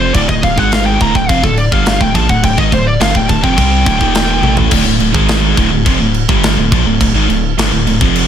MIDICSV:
0, 0, Header, 1, 5, 480
1, 0, Start_track
1, 0, Tempo, 571701
1, 125, Time_signature, 4, 2, 24, 8
1, 6947, End_track
2, 0, Start_track
2, 0, Title_t, "Lead electric guitar"
2, 0, Program_c, 0, 29
2, 0, Note_on_c, 0, 72, 89
2, 118, Note_off_c, 0, 72, 0
2, 125, Note_on_c, 0, 74, 92
2, 241, Note_off_c, 0, 74, 0
2, 245, Note_on_c, 0, 75, 98
2, 361, Note_off_c, 0, 75, 0
2, 366, Note_on_c, 0, 77, 106
2, 489, Note_off_c, 0, 77, 0
2, 489, Note_on_c, 0, 78, 102
2, 607, Note_off_c, 0, 78, 0
2, 607, Note_on_c, 0, 77, 95
2, 717, Note_off_c, 0, 77, 0
2, 720, Note_on_c, 0, 79, 94
2, 839, Note_off_c, 0, 79, 0
2, 853, Note_on_c, 0, 82, 121
2, 965, Note_off_c, 0, 82, 0
2, 966, Note_on_c, 0, 79, 99
2, 1080, Note_off_c, 0, 79, 0
2, 1080, Note_on_c, 0, 77, 100
2, 1199, Note_off_c, 0, 77, 0
2, 1207, Note_on_c, 0, 69, 73
2, 1322, Note_off_c, 0, 69, 0
2, 1325, Note_on_c, 0, 74, 100
2, 1449, Note_off_c, 0, 74, 0
2, 1449, Note_on_c, 0, 77, 87
2, 1563, Note_off_c, 0, 77, 0
2, 1577, Note_on_c, 0, 77, 102
2, 1687, Note_off_c, 0, 77, 0
2, 1690, Note_on_c, 0, 79, 99
2, 1804, Note_off_c, 0, 79, 0
2, 1810, Note_on_c, 0, 81, 116
2, 1928, Note_off_c, 0, 81, 0
2, 1928, Note_on_c, 0, 78, 101
2, 2043, Note_off_c, 0, 78, 0
2, 2053, Note_on_c, 0, 79, 120
2, 2165, Note_off_c, 0, 79, 0
2, 2168, Note_on_c, 0, 75, 101
2, 2283, Note_off_c, 0, 75, 0
2, 2296, Note_on_c, 0, 72, 99
2, 2407, Note_off_c, 0, 72, 0
2, 2409, Note_on_c, 0, 74, 91
2, 2523, Note_off_c, 0, 74, 0
2, 2532, Note_on_c, 0, 77, 90
2, 2645, Note_off_c, 0, 77, 0
2, 2659, Note_on_c, 0, 79, 93
2, 2765, Note_off_c, 0, 79, 0
2, 2768, Note_on_c, 0, 81, 123
2, 2883, Note_off_c, 0, 81, 0
2, 2888, Note_on_c, 0, 79, 95
2, 3812, Note_off_c, 0, 79, 0
2, 6947, End_track
3, 0, Start_track
3, 0, Title_t, "Distorted electric guitar"
3, 0, Program_c, 1, 30
3, 0, Note_on_c, 1, 41, 93
3, 0, Note_on_c, 1, 48, 93
3, 0, Note_on_c, 1, 53, 101
3, 114, Note_off_c, 1, 41, 0
3, 117, Note_on_c, 1, 38, 99
3, 118, Note_off_c, 1, 48, 0
3, 121, Note_off_c, 1, 53, 0
3, 122, Note_on_c, 1, 45, 116
3, 234, Note_off_c, 1, 38, 0
3, 236, Note_off_c, 1, 45, 0
3, 244, Note_on_c, 1, 38, 70
3, 247, Note_on_c, 1, 45, 75
3, 351, Note_off_c, 1, 38, 0
3, 357, Note_off_c, 1, 45, 0
3, 361, Note_on_c, 1, 38, 67
3, 367, Note_on_c, 1, 45, 83
3, 483, Note_off_c, 1, 38, 0
3, 486, Note_off_c, 1, 45, 0
3, 488, Note_on_c, 1, 44, 93
3, 491, Note_on_c, 1, 51, 101
3, 493, Note_on_c, 1, 56, 119
3, 839, Note_off_c, 1, 44, 0
3, 841, Note_off_c, 1, 51, 0
3, 841, Note_off_c, 1, 56, 0
3, 849, Note_on_c, 1, 38, 88
3, 852, Note_on_c, 1, 45, 106
3, 955, Note_off_c, 1, 45, 0
3, 956, Note_off_c, 1, 38, 0
3, 965, Note_on_c, 1, 45, 77
3, 966, Note_on_c, 1, 38, 62
3, 1084, Note_off_c, 1, 38, 0
3, 1085, Note_off_c, 1, 45, 0
3, 1088, Note_on_c, 1, 41, 100
3, 1094, Note_on_c, 1, 48, 112
3, 1199, Note_off_c, 1, 41, 0
3, 1202, Note_off_c, 1, 48, 0
3, 1204, Note_on_c, 1, 38, 70
3, 1206, Note_on_c, 1, 45, 75
3, 1396, Note_off_c, 1, 38, 0
3, 1397, Note_off_c, 1, 45, 0
3, 1444, Note_on_c, 1, 43, 95
3, 1452, Note_on_c, 1, 50, 105
3, 1452, Note_on_c, 1, 55, 98
3, 1677, Note_off_c, 1, 43, 0
3, 1681, Note_off_c, 1, 50, 0
3, 1681, Note_off_c, 1, 55, 0
3, 1684, Note_on_c, 1, 38, 68
3, 1691, Note_on_c, 1, 45, 81
3, 1798, Note_off_c, 1, 38, 0
3, 1801, Note_on_c, 1, 46, 90
3, 1804, Note_off_c, 1, 45, 0
3, 1807, Note_on_c, 1, 53, 112
3, 1916, Note_off_c, 1, 46, 0
3, 1919, Note_off_c, 1, 53, 0
3, 1923, Note_on_c, 1, 38, 66
3, 1926, Note_on_c, 1, 45, 74
3, 2031, Note_off_c, 1, 38, 0
3, 2033, Note_off_c, 1, 45, 0
3, 2041, Note_on_c, 1, 38, 72
3, 2043, Note_on_c, 1, 45, 84
3, 2154, Note_off_c, 1, 38, 0
3, 2157, Note_off_c, 1, 45, 0
3, 2157, Note_on_c, 1, 44, 91
3, 2161, Note_on_c, 1, 51, 101
3, 2274, Note_off_c, 1, 44, 0
3, 2275, Note_off_c, 1, 51, 0
3, 2281, Note_on_c, 1, 38, 60
3, 2282, Note_on_c, 1, 45, 78
3, 2475, Note_off_c, 1, 38, 0
3, 2475, Note_off_c, 1, 45, 0
3, 2519, Note_on_c, 1, 43, 99
3, 2525, Note_on_c, 1, 50, 112
3, 2635, Note_off_c, 1, 43, 0
3, 2638, Note_off_c, 1, 50, 0
3, 2640, Note_on_c, 1, 38, 72
3, 2644, Note_on_c, 1, 45, 76
3, 2740, Note_off_c, 1, 38, 0
3, 2747, Note_off_c, 1, 45, 0
3, 2750, Note_on_c, 1, 38, 69
3, 2757, Note_on_c, 1, 45, 74
3, 2862, Note_off_c, 1, 38, 0
3, 2866, Note_on_c, 1, 41, 99
3, 2871, Note_off_c, 1, 45, 0
3, 2874, Note_on_c, 1, 48, 104
3, 2974, Note_off_c, 1, 48, 0
3, 2981, Note_off_c, 1, 41, 0
3, 2985, Note_on_c, 1, 48, 91
3, 2991, Note_on_c, 1, 55, 96
3, 2996, Note_on_c, 1, 60, 113
3, 3227, Note_off_c, 1, 48, 0
3, 3231, Note_off_c, 1, 55, 0
3, 3233, Note_off_c, 1, 60, 0
3, 3235, Note_on_c, 1, 38, 102
3, 3241, Note_on_c, 1, 45, 106
3, 3352, Note_off_c, 1, 38, 0
3, 3356, Note_off_c, 1, 45, 0
3, 3357, Note_on_c, 1, 39, 93
3, 3362, Note_on_c, 1, 46, 111
3, 3367, Note_on_c, 1, 51, 102
3, 3712, Note_off_c, 1, 39, 0
3, 3716, Note_off_c, 1, 46, 0
3, 3716, Note_on_c, 1, 45, 85
3, 3718, Note_off_c, 1, 51, 0
3, 3722, Note_on_c, 1, 52, 107
3, 3727, Note_on_c, 1, 57, 95
3, 3953, Note_off_c, 1, 45, 0
3, 3956, Note_off_c, 1, 52, 0
3, 3957, Note_on_c, 1, 38, 108
3, 3958, Note_off_c, 1, 57, 0
3, 3963, Note_on_c, 1, 45, 111
3, 4067, Note_off_c, 1, 38, 0
3, 4071, Note_off_c, 1, 45, 0
3, 4077, Note_on_c, 1, 38, 70
3, 4081, Note_on_c, 1, 45, 81
3, 4189, Note_off_c, 1, 38, 0
3, 4195, Note_off_c, 1, 45, 0
3, 4200, Note_on_c, 1, 38, 63
3, 4205, Note_on_c, 1, 45, 77
3, 4314, Note_off_c, 1, 38, 0
3, 4318, Note_on_c, 1, 44, 89
3, 4323, Note_off_c, 1, 45, 0
3, 4326, Note_on_c, 1, 51, 108
3, 4331, Note_on_c, 1, 56, 100
3, 4673, Note_off_c, 1, 44, 0
3, 4678, Note_off_c, 1, 51, 0
3, 4680, Note_off_c, 1, 56, 0
3, 4683, Note_on_c, 1, 38, 95
3, 4684, Note_on_c, 1, 45, 97
3, 4784, Note_off_c, 1, 38, 0
3, 4790, Note_off_c, 1, 45, 0
3, 4794, Note_on_c, 1, 38, 69
3, 4800, Note_on_c, 1, 45, 80
3, 4908, Note_off_c, 1, 38, 0
3, 4911, Note_on_c, 1, 41, 92
3, 4913, Note_off_c, 1, 45, 0
3, 4916, Note_on_c, 1, 48, 117
3, 5030, Note_off_c, 1, 41, 0
3, 5033, Note_off_c, 1, 48, 0
3, 5035, Note_on_c, 1, 38, 73
3, 5042, Note_on_c, 1, 45, 85
3, 5231, Note_off_c, 1, 38, 0
3, 5235, Note_off_c, 1, 45, 0
3, 5281, Note_on_c, 1, 43, 99
3, 5287, Note_on_c, 1, 50, 97
3, 5289, Note_on_c, 1, 55, 111
3, 5515, Note_off_c, 1, 43, 0
3, 5518, Note_off_c, 1, 50, 0
3, 5519, Note_off_c, 1, 55, 0
3, 5523, Note_on_c, 1, 38, 71
3, 5525, Note_on_c, 1, 45, 77
3, 5643, Note_off_c, 1, 38, 0
3, 5644, Note_off_c, 1, 45, 0
3, 5648, Note_on_c, 1, 46, 95
3, 5657, Note_on_c, 1, 53, 104
3, 5758, Note_off_c, 1, 46, 0
3, 5763, Note_off_c, 1, 53, 0
3, 5763, Note_on_c, 1, 38, 68
3, 5770, Note_on_c, 1, 45, 75
3, 5879, Note_off_c, 1, 38, 0
3, 5882, Note_off_c, 1, 45, 0
3, 5889, Note_on_c, 1, 38, 72
3, 5892, Note_on_c, 1, 45, 81
3, 6004, Note_off_c, 1, 38, 0
3, 6007, Note_off_c, 1, 45, 0
3, 6007, Note_on_c, 1, 44, 101
3, 6011, Note_on_c, 1, 51, 98
3, 6118, Note_off_c, 1, 44, 0
3, 6120, Note_off_c, 1, 51, 0
3, 6125, Note_on_c, 1, 38, 69
3, 6130, Note_on_c, 1, 45, 76
3, 6316, Note_off_c, 1, 38, 0
3, 6318, Note_off_c, 1, 45, 0
3, 6367, Note_on_c, 1, 43, 98
3, 6375, Note_on_c, 1, 50, 117
3, 6478, Note_off_c, 1, 43, 0
3, 6482, Note_off_c, 1, 50, 0
3, 6492, Note_on_c, 1, 38, 70
3, 6494, Note_on_c, 1, 45, 67
3, 6596, Note_off_c, 1, 38, 0
3, 6600, Note_off_c, 1, 45, 0
3, 6606, Note_on_c, 1, 38, 69
3, 6610, Note_on_c, 1, 45, 74
3, 6720, Note_off_c, 1, 38, 0
3, 6723, Note_on_c, 1, 41, 97
3, 6724, Note_off_c, 1, 45, 0
3, 6728, Note_on_c, 1, 48, 95
3, 6732, Note_on_c, 1, 53, 100
3, 6947, Note_off_c, 1, 41, 0
3, 6947, Note_off_c, 1, 48, 0
3, 6947, Note_off_c, 1, 53, 0
3, 6947, End_track
4, 0, Start_track
4, 0, Title_t, "Analog synth bass"
4, 0, Program_c, 2, 38
4, 0, Note_on_c, 2, 29, 98
4, 98, Note_off_c, 2, 29, 0
4, 126, Note_on_c, 2, 26, 102
4, 237, Note_off_c, 2, 26, 0
4, 241, Note_on_c, 2, 26, 85
4, 355, Note_off_c, 2, 26, 0
4, 363, Note_on_c, 2, 26, 93
4, 475, Note_off_c, 2, 26, 0
4, 484, Note_on_c, 2, 32, 94
4, 819, Note_off_c, 2, 32, 0
4, 847, Note_on_c, 2, 26, 105
4, 957, Note_off_c, 2, 26, 0
4, 966, Note_on_c, 2, 26, 78
4, 1077, Note_off_c, 2, 26, 0
4, 1089, Note_on_c, 2, 29, 102
4, 1198, Note_off_c, 2, 29, 0
4, 1206, Note_on_c, 2, 26, 86
4, 1429, Note_off_c, 2, 26, 0
4, 1446, Note_on_c, 2, 31, 108
4, 1669, Note_off_c, 2, 31, 0
4, 1683, Note_on_c, 2, 26, 78
4, 1795, Note_off_c, 2, 26, 0
4, 1804, Note_on_c, 2, 34, 102
4, 1916, Note_off_c, 2, 34, 0
4, 1924, Note_on_c, 2, 26, 85
4, 2036, Note_off_c, 2, 26, 0
4, 2048, Note_on_c, 2, 26, 85
4, 2158, Note_off_c, 2, 26, 0
4, 2168, Note_on_c, 2, 32, 97
4, 2278, Note_off_c, 2, 32, 0
4, 2286, Note_on_c, 2, 26, 85
4, 2508, Note_off_c, 2, 26, 0
4, 2521, Note_on_c, 2, 31, 95
4, 2634, Note_off_c, 2, 31, 0
4, 2644, Note_on_c, 2, 26, 84
4, 2756, Note_off_c, 2, 26, 0
4, 2765, Note_on_c, 2, 26, 84
4, 2876, Note_off_c, 2, 26, 0
4, 2885, Note_on_c, 2, 29, 98
4, 2996, Note_off_c, 2, 29, 0
4, 3004, Note_on_c, 2, 36, 106
4, 3227, Note_off_c, 2, 36, 0
4, 3244, Note_on_c, 2, 26, 92
4, 3356, Note_off_c, 2, 26, 0
4, 3364, Note_on_c, 2, 27, 110
4, 3699, Note_off_c, 2, 27, 0
4, 3712, Note_on_c, 2, 33, 100
4, 3941, Note_off_c, 2, 33, 0
4, 3958, Note_on_c, 2, 26, 99
4, 4072, Note_off_c, 2, 26, 0
4, 4079, Note_on_c, 2, 26, 80
4, 4193, Note_off_c, 2, 26, 0
4, 4199, Note_on_c, 2, 26, 88
4, 4313, Note_off_c, 2, 26, 0
4, 4319, Note_on_c, 2, 32, 101
4, 4656, Note_off_c, 2, 32, 0
4, 4681, Note_on_c, 2, 26, 100
4, 4794, Note_off_c, 2, 26, 0
4, 4799, Note_on_c, 2, 26, 86
4, 4913, Note_off_c, 2, 26, 0
4, 4921, Note_on_c, 2, 29, 97
4, 5034, Note_off_c, 2, 29, 0
4, 5039, Note_on_c, 2, 26, 86
4, 5264, Note_off_c, 2, 26, 0
4, 5279, Note_on_c, 2, 31, 103
4, 5504, Note_off_c, 2, 31, 0
4, 5515, Note_on_c, 2, 26, 84
4, 5631, Note_off_c, 2, 26, 0
4, 5641, Note_on_c, 2, 34, 97
4, 5754, Note_off_c, 2, 34, 0
4, 5759, Note_on_c, 2, 26, 83
4, 5872, Note_off_c, 2, 26, 0
4, 5884, Note_on_c, 2, 26, 88
4, 5993, Note_off_c, 2, 26, 0
4, 5998, Note_on_c, 2, 32, 102
4, 6112, Note_off_c, 2, 32, 0
4, 6119, Note_on_c, 2, 26, 94
4, 6344, Note_off_c, 2, 26, 0
4, 6365, Note_on_c, 2, 31, 101
4, 6476, Note_off_c, 2, 31, 0
4, 6490, Note_on_c, 2, 26, 87
4, 6595, Note_off_c, 2, 26, 0
4, 6600, Note_on_c, 2, 26, 87
4, 6713, Note_off_c, 2, 26, 0
4, 6725, Note_on_c, 2, 29, 98
4, 6947, Note_off_c, 2, 29, 0
4, 6947, End_track
5, 0, Start_track
5, 0, Title_t, "Drums"
5, 122, Note_on_c, 9, 36, 113
5, 123, Note_on_c, 9, 49, 83
5, 206, Note_off_c, 9, 36, 0
5, 207, Note_off_c, 9, 49, 0
5, 243, Note_on_c, 9, 36, 86
5, 327, Note_off_c, 9, 36, 0
5, 362, Note_on_c, 9, 49, 57
5, 363, Note_on_c, 9, 36, 83
5, 445, Note_off_c, 9, 49, 0
5, 447, Note_off_c, 9, 36, 0
5, 484, Note_on_c, 9, 36, 88
5, 568, Note_off_c, 9, 36, 0
5, 604, Note_on_c, 9, 49, 75
5, 611, Note_on_c, 9, 38, 111
5, 688, Note_off_c, 9, 49, 0
5, 695, Note_off_c, 9, 38, 0
5, 846, Note_on_c, 9, 36, 108
5, 847, Note_on_c, 9, 49, 60
5, 930, Note_off_c, 9, 36, 0
5, 931, Note_off_c, 9, 49, 0
5, 966, Note_on_c, 9, 36, 92
5, 1050, Note_off_c, 9, 36, 0
5, 1086, Note_on_c, 9, 36, 103
5, 1086, Note_on_c, 9, 49, 78
5, 1169, Note_off_c, 9, 36, 0
5, 1170, Note_off_c, 9, 49, 0
5, 1205, Note_on_c, 9, 36, 88
5, 1289, Note_off_c, 9, 36, 0
5, 1321, Note_on_c, 9, 49, 64
5, 1405, Note_off_c, 9, 49, 0
5, 1445, Note_on_c, 9, 36, 104
5, 1529, Note_off_c, 9, 36, 0
5, 1561, Note_on_c, 9, 49, 84
5, 1569, Note_on_c, 9, 38, 122
5, 1645, Note_off_c, 9, 49, 0
5, 1653, Note_off_c, 9, 38, 0
5, 1685, Note_on_c, 9, 36, 95
5, 1769, Note_off_c, 9, 36, 0
5, 1805, Note_on_c, 9, 36, 91
5, 1805, Note_on_c, 9, 49, 65
5, 1889, Note_off_c, 9, 36, 0
5, 1889, Note_off_c, 9, 49, 0
5, 1926, Note_on_c, 9, 36, 93
5, 2010, Note_off_c, 9, 36, 0
5, 2044, Note_on_c, 9, 49, 85
5, 2046, Note_on_c, 9, 36, 98
5, 2128, Note_off_c, 9, 49, 0
5, 2130, Note_off_c, 9, 36, 0
5, 2166, Note_on_c, 9, 36, 88
5, 2250, Note_off_c, 9, 36, 0
5, 2286, Note_on_c, 9, 36, 80
5, 2286, Note_on_c, 9, 49, 60
5, 2370, Note_off_c, 9, 36, 0
5, 2370, Note_off_c, 9, 49, 0
5, 2523, Note_on_c, 9, 49, 88
5, 2531, Note_on_c, 9, 38, 120
5, 2607, Note_off_c, 9, 49, 0
5, 2615, Note_off_c, 9, 38, 0
5, 2644, Note_on_c, 9, 36, 97
5, 2728, Note_off_c, 9, 36, 0
5, 2765, Note_on_c, 9, 36, 93
5, 2767, Note_on_c, 9, 49, 67
5, 2849, Note_off_c, 9, 36, 0
5, 2851, Note_off_c, 9, 49, 0
5, 2885, Note_on_c, 9, 36, 90
5, 2969, Note_off_c, 9, 36, 0
5, 3004, Note_on_c, 9, 36, 100
5, 3005, Note_on_c, 9, 49, 86
5, 3088, Note_off_c, 9, 36, 0
5, 3089, Note_off_c, 9, 49, 0
5, 3244, Note_on_c, 9, 36, 123
5, 3245, Note_on_c, 9, 49, 67
5, 3328, Note_off_c, 9, 36, 0
5, 3329, Note_off_c, 9, 49, 0
5, 3365, Note_on_c, 9, 36, 88
5, 3449, Note_off_c, 9, 36, 0
5, 3482, Note_on_c, 9, 49, 88
5, 3490, Note_on_c, 9, 38, 122
5, 3566, Note_off_c, 9, 49, 0
5, 3574, Note_off_c, 9, 38, 0
5, 3722, Note_on_c, 9, 48, 70
5, 3805, Note_off_c, 9, 48, 0
5, 3837, Note_on_c, 9, 43, 105
5, 3921, Note_off_c, 9, 43, 0
5, 3955, Note_on_c, 9, 49, 80
5, 3955, Note_on_c, 9, 57, 124
5, 3960, Note_on_c, 9, 36, 108
5, 4039, Note_off_c, 9, 49, 0
5, 4039, Note_off_c, 9, 57, 0
5, 4044, Note_off_c, 9, 36, 0
5, 4198, Note_on_c, 9, 49, 60
5, 4282, Note_off_c, 9, 49, 0
5, 4319, Note_on_c, 9, 36, 120
5, 4403, Note_off_c, 9, 36, 0
5, 4437, Note_on_c, 9, 49, 81
5, 4444, Note_on_c, 9, 38, 109
5, 4521, Note_off_c, 9, 49, 0
5, 4528, Note_off_c, 9, 38, 0
5, 4677, Note_on_c, 9, 49, 66
5, 4680, Note_on_c, 9, 36, 109
5, 4761, Note_off_c, 9, 49, 0
5, 4764, Note_off_c, 9, 36, 0
5, 4919, Note_on_c, 9, 49, 84
5, 4920, Note_on_c, 9, 36, 116
5, 5003, Note_off_c, 9, 49, 0
5, 5004, Note_off_c, 9, 36, 0
5, 5158, Note_on_c, 9, 49, 73
5, 5242, Note_off_c, 9, 49, 0
5, 5281, Note_on_c, 9, 36, 115
5, 5365, Note_off_c, 9, 36, 0
5, 5401, Note_on_c, 9, 49, 85
5, 5408, Note_on_c, 9, 38, 120
5, 5485, Note_off_c, 9, 49, 0
5, 5492, Note_off_c, 9, 38, 0
5, 5642, Note_on_c, 9, 36, 117
5, 5645, Note_on_c, 9, 49, 74
5, 5726, Note_off_c, 9, 36, 0
5, 5729, Note_off_c, 9, 49, 0
5, 5883, Note_on_c, 9, 36, 92
5, 5884, Note_on_c, 9, 49, 95
5, 5967, Note_off_c, 9, 36, 0
5, 5968, Note_off_c, 9, 49, 0
5, 6126, Note_on_c, 9, 49, 68
5, 6210, Note_off_c, 9, 49, 0
5, 6368, Note_on_c, 9, 49, 96
5, 6376, Note_on_c, 9, 38, 116
5, 6452, Note_off_c, 9, 49, 0
5, 6459, Note_off_c, 9, 38, 0
5, 6607, Note_on_c, 9, 49, 74
5, 6691, Note_off_c, 9, 49, 0
5, 6725, Note_on_c, 9, 36, 117
5, 6809, Note_off_c, 9, 36, 0
5, 6847, Note_on_c, 9, 49, 98
5, 6931, Note_off_c, 9, 49, 0
5, 6947, End_track
0, 0, End_of_file